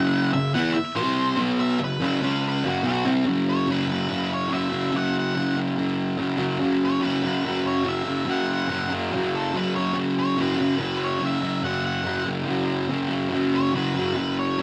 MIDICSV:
0, 0, Header, 1, 4, 480
1, 0, Start_track
1, 0, Tempo, 417537
1, 1829, Time_signature, 4, 2, 24, 8
1, 8549, Tempo, 420757
1, 16748, End_track
2, 0, Start_track
2, 0, Title_t, "Lead electric guitar"
2, 0, Program_c, 0, 29
2, 0, Note_on_c, 0, 78, 94
2, 368, Note_off_c, 0, 78, 0
2, 382, Note_on_c, 0, 76, 98
2, 618, Note_off_c, 0, 76, 0
2, 624, Note_on_c, 0, 78, 92
2, 843, Note_off_c, 0, 78, 0
2, 847, Note_on_c, 0, 76, 96
2, 1091, Note_off_c, 0, 76, 0
2, 1099, Note_on_c, 0, 72, 95
2, 1569, Note_off_c, 0, 72, 0
2, 1842, Note_on_c, 0, 76, 107
2, 2068, Note_off_c, 0, 76, 0
2, 2115, Note_on_c, 0, 71, 76
2, 2325, Note_off_c, 0, 71, 0
2, 2347, Note_on_c, 0, 71, 99
2, 2794, Note_off_c, 0, 71, 0
2, 2858, Note_on_c, 0, 71, 90
2, 3057, Note_off_c, 0, 71, 0
2, 3092, Note_on_c, 0, 66, 92
2, 3293, Note_off_c, 0, 66, 0
2, 3306, Note_on_c, 0, 66, 95
2, 3520, Note_off_c, 0, 66, 0
2, 4016, Note_on_c, 0, 73, 93
2, 4235, Note_off_c, 0, 73, 0
2, 4269, Note_on_c, 0, 71, 87
2, 4946, Note_off_c, 0, 71, 0
2, 4988, Note_on_c, 0, 73, 88
2, 5201, Note_off_c, 0, 73, 0
2, 5204, Note_on_c, 0, 76, 73
2, 5661, Note_off_c, 0, 76, 0
2, 5715, Note_on_c, 0, 78, 97
2, 5924, Note_off_c, 0, 78, 0
2, 5971, Note_on_c, 0, 78, 90
2, 6405, Note_off_c, 0, 78, 0
2, 7872, Note_on_c, 0, 73, 94
2, 8074, Note_off_c, 0, 73, 0
2, 8078, Note_on_c, 0, 71, 80
2, 8773, Note_off_c, 0, 71, 0
2, 8817, Note_on_c, 0, 73, 93
2, 9035, Note_off_c, 0, 73, 0
2, 9058, Note_on_c, 0, 76, 80
2, 9508, Note_off_c, 0, 76, 0
2, 9546, Note_on_c, 0, 78, 90
2, 9759, Note_off_c, 0, 78, 0
2, 9802, Note_on_c, 0, 78, 95
2, 10240, Note_off_c, 0, 78, 0
2, 10734, Note_on_c, 0, 69, 85
2, 10953, Note_off_c, 0, 69, 0
2, 10978, Note_on_c, 0, 71, 83
2, 11189, Note_off_c, 0, 71, 0
2, 11194, Note_on_c, 0, 73, 78
2, 11423, Note_off_c, 0, 73, 0
2, 11695, Note_on_c, 0, 73, 93
2, 11914, Note_off_c, 0, 73, 0
2, 11943, Note_on_c, 0, 71, 87
2, 12624, Note_off_c, 0, 71, 0
2, 12658, Note_on_c, 0, 73, 88
2, 12876, Note_off_c, 0, 73, 0
2, 12905, Note_on_c, 0, 76, 73
2, 13344, Note_off_c, 0, 76, 0
2, 13348, Note_on_c, 0, 78, 91
2, 13575, Note_off_c, 0, 78, 0
2, 13589, Note_on_c, 0, 78, 86
2, 14055, Note_off_c, 0, 78, 0
2, 15522, Note_on_c, 0, 73, 100
2, 15749, Note_off_c, 0, 73, 0
2, 15756, Note_on_c, 0, 71, 80
2, 16452, Note_off_c, 0, 71, 0
2, 16485, Note_on_c, 0, 73, 86
2, 16711, Note_off_c, 0, 73, 0
2, 16748, End_track
3, 0, Start_track
3, 0, Title_t, "Distorted electric guitar"
3, 0, Program_c, 1, 30
3, 0, Note_on_c, 1, 42, 98
3, 0, Note_on_c, 1, 49, 113
3, 0, Note_on_c, 1, 54, 106
3, 366, Note_off_c, 1, 42, 0
3, 374, Note_off_c, 1, 49, 0
3, 378, Note_off_c, 1, 54, 0
3, 380, Note_on_c, 1, 42, 66
3, 389, Note_on_c, 1, 49, 65
3, 577, Note_off_c, 1, 42, 0
3, 581, Note_off_c, 1, 49, 0
3, 622, Note_on_c, 1, 52, 92
3, 634, Note_on_c, 1, 59, 102
3, 644, Note_on_c, 1, 64, 100
3, 858, Note_off_c, 1, 52, 0
3, 864, Note_off_c, 1, 59, 0
3, 869, Note_off_c, 1, 64, 0
3, 1097, Note_on_c, 1, 48, 80
3, 1102, Note_on_c, 1, 55, 96
3, 1108, Note_on_c, 1, 60, 102
3, 1565, Note_off_c, 1, 48, 0
3, 1570, Note_on_c, 1, 47, 87
3, 1572, Note_off_c, 1, 55, 0
3, 1577, Note_on_c, 1, 54, 96
3, 1581, Note_off_c, 1, 60, 0
3, 1594, Note_on_c, 1, 59, 99
3, 2052, Note_off_c, 1, 47, 0
3, 2055, Note_off_c, 1, 54, 0
3, 2055, Note_on_c, 1, 42, 58
3, 2060, Note_on_c, 1, 49, 69
3, 2064, Note_off_c, 1, 59, 0
3, 2254, Note_off_c, 1, 42, 0
3, 2256, Note_off_c, 1, 49, 0
3, 2298, Note_on_c, 1, 42, 97
3, 2304, Note_on_c, 1, 49, 96
3, 2312, Note_on_c, 1, 54, 95
3, 2531, Note_off_c, 1, 49, 0
3, 2536, Note_off_c, 1, 42, 0
3, 2543, Note_off_c, 1, 54, 0
3, 2545, Note_on_c, 1, 49, 86
3, 2555, Note_on_c, 1, 56, 93
3, 2563, Note_on_c, 1, 61, 91
3, 3019, Note_off_c, 1, 49, 0
3, 3024, Note_off_c, 1, 56, 0
3, 3028, Note_off_c, 1, 61, 0
3, 3034, Note_on_c, 1, 42, 84
3, 3041, Note_on_c, 1, 49, 92
3, 3054, Note_on_c, 1, 54, 95
3, 3246, Note_off_c, 1, 54, 0
3, 3250, Note_off_c, 1, 49, 0
3, 3255, Note_on_c, 1, 47, 93
3, 3260, Note_on_c, 1, 54, 90
3, 3263, Note_off_c, 1, 42, 0
3, 3274, Note_on_c, 1, 59, 100
3, 3494, Note_off_c, 1, 47, 0
3, 3496, Note_off_c, 1, 54, 0
3, 3503, Note_off_c, 1, 59, 0
3, 3506, Note_on_c, 1, 48, 87
3, 3522, Note_on_c, 1, 55, 94
3, 3533, Note_on_c, 1, 60, 92
3, 3730, Note_on_c, 1, 42, 89
3, 3739, Note_off_c, 1, 48, 0
3, 3747, Note_off_c, 1, 55, 0
3, 3751, Note_on_c, 1, 49, 95
3, 3753, Note_off_c, 1, 60, 0
3, 3780, Note_on_c, 1, 54, 94
3, 4207, Note_off_c, 1, 42, 0
3, 4212, Note_on_c, 1, 42, 85
3, 4227, Note_off_c, 1, 49, 0
3, 4241, Note_on_c, 1, 49, 86
3, 4251, Note_off_c, 1, 54, 0
3, 4255, Note_on_c, 1, 54, 97
3, 4444, Note_off_c, 1, 54, 0
3, 4448, Note_on_c, 1, 54, 70
3, 4486, Note_off_c, 1, 49, 0
3, 4500, Note_on_c, 1, 49, 62
3, 4676, Note_off_c, 1, 42, 0
3, 4680, Note_on_c, 1, 42, 73
3, 4695, Note_off_c, 1, 49, 0
3, 4709, Note_on_c, 1, 49, 78
3, 4725, Note_off_c, 1, 54, 0
3, 4730, Note_on_c, 1, 54, 81
3, 5150, Note_off_c, 1, 42, 0
3, 5155, Note_on_c, 1, 42, 72
3, 5163, Note_off_c, 1, 49, 0
3, 5177, Note_on_c, 1, 49, 72
3, 5201, Note_off_c, 1, 54, 0
3, 5206, Note_on_c, 1, 54, 78
3, 5383, Note_off_c, 1, 54, 0
3, 5388, Note_on_c, 1, 54, 67
3, 5413, Note_off_c, 1, 49, 0
3, 5427, Note_on_c, 1, 49, 61
3, 5639, Note_off_c, 1, 42, 0
3, 5643, Note_on_c, 1, 42, 89
3, 5654, Note_off_c, 1, 49, 0
3, 5668, Note_on_c, 1, 49, 96
3, 5688, Note_off_c, 1, 54, 0
3, 5692, Note_on_c, 1, 54, 104
3, 6135, Note_off_c, 1, 42, 0
3, 6140, Note_on_c, 1, 42, 86
3, 6151, Note_off_c, 1, 49, 0
3, 6165, Note_on_c, 1, 49, 101
3, 6186, Note_off_c, 1, 54, 0
3, 6190, Note_on_c, 1, 54, 102
3, 6385, Note_off_c, 1, 54, 0
3, 6389, Note_on_c, 1, 54, 63
3, 6425, Note_off_c, 1, 49, 0
3, 6439, Note_on_c, 1, 49, 56
3, 6614, Note_off_c, 1, 42, 0
3, 6618, Note_on_c, 1, 42, 71
3, 6634, Note_off_c, 1, 49, 0
3, 6648, Note_on_c, 1, 49, 78
3, 6658, Note_off_c, 1, 54, 0
3, 6663, Note_on_c, 1, 54, 87
3, 7076, Note_off_c, 1, 42, 0
3, 7080, Note_on_c, 1, 42, 73
3, 7093, Note_off_c, 1, 49, 0
3, 7106, Note_on_c, 1, 49, 76
3, 7124, Note_off_c, 1, 54, 0
3, 7129, Note_on_c, 1, 54, 84
3, 7321, Note_off_c, 1, 54, 0
3, 7326, Note_on_c, 1, 54, 75
3, 7357, Note_off_c, 1, 49, 0
3, 7370, Note_on_c, 1, 49, 58
3, 7569, Note_off_c, 1, 42, 0
3, 7574, Note_on_c, 1, 42, 93
3, 7585, Note_off_c, 1, 49, 0
3, 7599, Note_on_c, 1, 49, 96
3, 7610, Note_off_c, 1, 54, 0
3, 7614, Note_on_c, 1, 54, 102
3, 8047, Note_off_c, 1, 42, 0
3, 8051, Note_on_c, 1, 42, 82
3, 8068, Note_off_c, 1, 49, 0
3, 8081, Note_on_c, 1, 49, 99
3, 8097, Note_off_c, 1, 54, 0
3, 8102, Note_on_c, 1, 54, 101
3, 8305, Note_off_c, 1, 54, 0
3, 8309, Note_on_c, 1, 54, 74
3, 8337, Note_off_c, 1, 49, 0
3, 8351, Note_on_c, 1, 49, 57
3, 8535, Note_off_c, 1, 42, 0
3, 8540, Note_on_c, 1, 42, 70
3, 8554, Note_off_c, 1, 49, 0
3, 8568, Note_on_c, 1, 49, 80
3, 8582, Note_off_c, 1, 54, 0
3, 8586, Note_on_c, 1, 54, 88
3, 8998, Note_off_c, 1, 42, 0
3, 9003, Note_on_c, 1, 42, 76
3, 9014, Note_off_c, 1, 49, 0
3, 9028, Note_on_c, 1, 49, 78
3, 9046, Note_off_c, 1, 54, 0
3, 9051, Note_on_c, 1, 54, 82
3, 9234, Note_off_c, 1, 54, 0
3, 9239, Note_on_c, 1, 54, 63
3, 9272, Note_off_c, 1, 49, 0
3, 9285, Note_on_c, 1, 49, 57
3, 9476, Note_off_c, 1, 42, 0
3, 9481, Note_on_c, 1, 42, 88
3, 9488, Note_off_c, 1, 49, 0
3, 9502, Note_on_c, 1, 49, 98
3, 9522, Note_off_c, 1, 54, 0
3, 9527, Note_on_c, 1, 54, 103
3, 9962, Note_off_c, 1, 42, 0
3, 9967, Note_on_c, 1, 42, 82
3, 9977, Note_off_c, 1, 49, 0
3, 9991, Note_on_c, 1, 49, 83
3, 10008, Note_off_c, 1, 54, 0
3, 10013, Note_on_c, 1, 54, 104
3, 10207, Note_off_c, 1, 54, 0
3, 10211, Note_on_c, 1, 54, 69
3, 10236, Note_off_c, 1, 49, 0
3, 10250, Note_on_c, 1, 49, 56
3, 10457, Note_off_c, 1, 42, 0
3, 10462, Note_on_c, 1, 42, 71
3, 10470, Note_off_c, 1, 49, 0
3, 10483, Note_on_c, 1, 49, 82
3, 10504, Note_off_c, 1, 54, 0
3, 10509, Note_on_c, 1, 54, 78
3, 10935, Note_off_c, 1, 42, 0
3, 10940, Note_on_c, 1, 42, 76
3, 10949, Note_off_c, 1, 49, 0
3, 10963, Note_on_c, 1, 49, 70
3, 10978, Note_off_c, 1, 54, 0
3, 10983, Note_on_c, 1, 54, 80
3, 11164, Note_off_c, 1, 54, 0
3, 11168, Note_on_c, 1, 54, 69
3, 11200, Note_off_c, 1, 49, 0
3, 11214, Note_on_c, 1, 49, 58
3, 11394, Note_off_c, 1, 42, 0
3, 11398, Note_on_c, 1, 42, 87
3, 11414, Note_off_c, 1, 49, 0
3, 11428, Note_on_c, 1, 49, 103
3, 11442, Note_off_c, 1, 54, 0
3, 11447, Note_on_c, 1, 54, 96
3, 11878, Note_off_c, 1, 42, 0
3, 11882, Note_on_c, 1, 42, 83
3, 11899, Note_off_c, 1, 49, 0
3, 11913, Note_on_c, 1, 49, 88
3, 11925, Note_off_c, 1, 54, 0
3, 11929, Note_on_c, 1, 54, 93
3, 12112, Note_off_c, 1, 54, 0
3, 12117, Note_on_c, 1, 54, 70
3, 12156, Note_off_c, 1, 49, 0
3, 12170, Note_on_c, 1, 49, 51
3, 12343, Note_off_c, 1, 42, 0
3, 12347, Note_on_c, 1, 42, 76
3, 12361, Note_off_c, 1, 49, 0
3, 12375, Note_on_c, 1, 49, 81
3, 12395, Note_off_c, 1, 54, 0
3, 12399, Note_on_c, 1, 54, 80
3, 12829, Note_off_c, 1, 42, 0
3, 12833, Note_on_c, 1, 42, 73
3, 12848, Note_off_c, 1, 49, 0
3, 12861, Note_on_c, 1, 49, 79
3, 12870, Note_off_c, 1, 54, 0
3, 12874, Note_on_c, 1, 54, 76
3, 13081, Note_off_c, 1, 54, 0
3, 13086, Note_on_c, 1, 54, 74
3, 13112, Note_off_c, 1, 49, 0
3, 13126, Note_on_c, 1, 49, 57
3, 13321, Note_off_c, 1, 42, 0
3, 13326, Note_on_c, 1, 42, 94
3, 13336, Note_off_c, 1, 49, 0
3, 13350, Note_on_c, 1, 49, 98
3, 13360, Note_off_c, 1, 54, 0
3, 13365, Note_on_c, 1, 54, 112
3, 13789, Note_off_c, 1, 42, 0
3, 13793, Note_on_c, 1, 42, 92
3, 13808, Note_off_c, 1, 49, 0
3, 13822, Note_on_c, 1, 49, 99
3, 13829, Note_off_c, 1, 54, 0
3, 13834, Note_on_c, 1, 54, 96
3, 14035, Note_off_c, 1, 54, 0
3, 14039, Note_on_c, 1, 54, 71
3, 14071, Note_off_c, 1, 49, 0
3, 14085, Note_on_c, 1, 49, 58
3, 14264, Note_off_c, 1, 42, 0
3, 14269, Note_on_c, 1, 42, 77
3, 14285, Note_off_c, 1, 49, 0
3, 14299, Note_on_c, 1, 49, 78
3, 14313, Note_off_c, 1, 54, 0
3, 14317, Note_on_c, 1, 54, 75
3, 14761, Note_off_c, 1, 42, 0
3, 14765, Note_on_c, 1, 42, 72
3, 14771, Note_off_c, 1, 49, 0
3, 14785, Note_on_c, 1, 49, 80
3, 14806, Note_off_c, 1, 54, 0
3, 14811, Note_on_c, 1, 54, 85
3, 14993, Note_off_c, 1, 54, 0
3, 14998, Note_on_c, 1, 54, 73
3, 15035, Note_off_c, 1, 49, 0
3, 15049, Note_on_c, 1, 49, 56
3, 15221, Note_off_c, 1, 42, 0
3, 15226, Note_on_c, 1, 42, 93
3, 15244, Note_off_c, 1, 49, 0
3, 15258, Note_on_c, 1, 49, 98
3, 15274, Note_off_c, 1, 54, 0
3, 15278, Note_on_c, 1, 54, 101
3, 15717, Note_off_c, 1, 42, 0
3, 15722, Note_on_c, 1, 42, 84
3, 15739, Note_off_c, 1, 49, 0
3, 15753, Note_on_c, 1, 49, 93
3, 15759, Note_off_c, 1, 54, 0
3, 15764, Note_on_c, 1, 54, 102
3, 15980, Note_off_c, 1, 54, 0
3, 15984, Note_on_c, 1, 54, 78
3, 16015, Note_off_c, 1, 49, 0
3, 16028, Note_on_c, 1, 49, 59
3, 16195, Note_off_c, 1, 42, 0
3, 16200, Note_on_c, 1, 42, 74
3, 16211, Note_off_c, 1, 49, 0
3, 16225, Note_on_c, 1, 49, 81
3, 16239, Note_off_c, 1, 54, 0
3, 16243, Note_on_c, 1, 54, 77
3, 16688, Note_off_c, 1, 42, 0
3, 16692, Note_on_c, 1, 42, 78
3, 16698, Note_off_c, 1, 49, 0
3, 16712, Note_on_c, 1, 49, 83
3, 16732, Note_off_c, 1, 54, 0
3, 16748, Note_off_c, 1, 42, 0
3, 16748, Note_off_c, 1, 49, 0
3, 16748, End_track
4, 0, Start_track
4, 0, Title_t, "Muted distorted electric guitar strokes"
4, 847, Note_on_c, 9, 29, 56
4, 962, Note_off_c, 9, 29, 0
4, 16748, End_track
0, 0, End_of_file